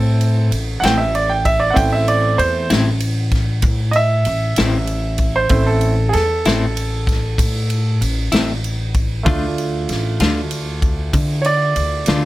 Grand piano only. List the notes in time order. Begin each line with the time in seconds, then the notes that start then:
Already playing: A3 C4 E4 A4
0.80 F#5
0.85 G5
0.98 E5
1.15 D5
1.29 G5
1.45 E5
1.60 D5
1.70 A3 C4 E4 F#5
1.76 G5
1.92 E5
2.08 D5
2.38 C5
3.91 D#5
3.96 E5
5.36 C5
5.49 A3 C4 E4
5.67 A4
6.09 G#4
6.13 A4
9.23 A3 D4 F4
11.42 C#5
11.46 D5